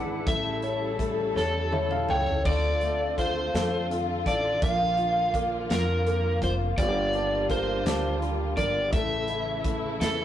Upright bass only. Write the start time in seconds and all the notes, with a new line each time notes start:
Already playing: G#1
0.27 A1
1.36 E2
2.09 C#2
2.45 D2
3.54 F2
4.26 A1
4.62 A#1
5.70 F2
6.42 F1
6.78 G1
7.85 D2
8.57 G1
8.93 A1
10.00 E2